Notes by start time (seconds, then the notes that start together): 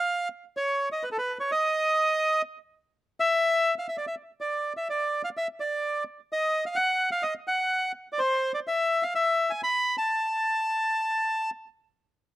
Already playing: F5
0.57 C#5
0.92 D#5
1.03 B4
1.12 A4
1.18 B4
1.40 C#5
1.52 D#5
3.20 E5
3.79 F5
3.89 E5
3.97 D5
4.07 E5
4.41 D5
4.77 E5
4.90 D5
5.24 F5
5.37 E5
5.60 D5
6.33 D#5
6.66 F5
6.76 F#5
7.12 F5
7.23 D#5
7.48 F#5
8.13 D5
8.19 C5
8.54 D5
8.67 E5
9.03 F5
9.15 E5
9.50 G#5
9.64 B5
9.98 A5